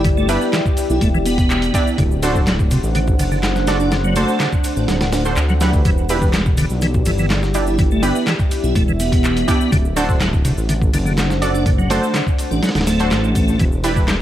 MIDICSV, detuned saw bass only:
0, 0, Header, 1, 2, 480
1, 0, Start_track
1, 0, Tempo, 483871
1, 46, Time_signature, 4, 2, 24, 8
1, 14105, End_track
2, 0, Start_track
2, 0, Title_t, "Detuned saw bass"
2, 0, Program_c, 0, 39
2, 0, Note_on_c, 0, 31, 106
2, 372, Note_off_c, 0, 31, 0
2, 893, Note_on_c, 0, 35, 88
2, 985, Note_off_c, 0, 35, 0
2, 1006, Note_on_c, 0, 28, 92
2, 1690, Note_off_c, 0, 28, 0
2, 1966, Note_on_c, 0, 26, 96
2, 2771, Note_off_c, 0, 26, 0
2, 2813, Note_on_c, 0, 33, 85
2, 3131, Note_off_c, 0, 33, 0
2, 3166, Note_on_c, 0, 30, 105
2, 4211, Note_off_c, 0, 30, 0
2, 4728, Note_on_c, 0, 33, 87
2, 4822, Note_off_c, 0, 33, 0
2, 4848, Note_on_c, 0, 26, 95
2, 5321, Note_off_c, 0, 26, 0
2, 5327, Note_on_c, 0, 38, 100
2, 5770, Note_off_c, 0, 38, 0
2, 5803, Note_on_c, 0, 28, 95
2, 6610, Note_off_c, 0, 28, 0
2, 6653, Note_on_c, 0, 35, 84
2, 6971, Note_off_c, 0, 35, 0
2, 7004, Note_on_c, 0, 31, 102
2, 8050, Note_off_c, 0, 31, 0
2, 8566, Note_on_c, 0, 35, 83
2, 8661, Note_off_c, 0, 35, 0
2, 8687, Note_on_c, 0, 28, 96
2, 9370, Note_off_c, 0, 28, 0
2, 9647, Note_on_c, 0, 26, 97
2, 10452, Note_off_c, 0, 26, 0
2, 10491, Note_on_c, 0, 33, 84
2, 10810, Note_off_c, 0, 33, 0
2, 10850, Note_on_c, 0, 30, 101
2, 11893, Note_off_c, 0, 30, 0
2, 12411, Note_on_c, 0, 33, 82
2, 12503, Note_off_c, 0, 33, 0
2, 12649, Note_on_c, 0, 26, 90
2, 13004, Note_on_c, 0, 33, 93
2, 13019, Note_off_c, 0, 26, 0
2, 13449, Note_off_c, 0, 33, 0
2, 13485, Note_on_c, 0, 28, 98
2, 14105, Note_off_c, 0, 28, 0
2, 14105, End_track
0, 0, End_of_file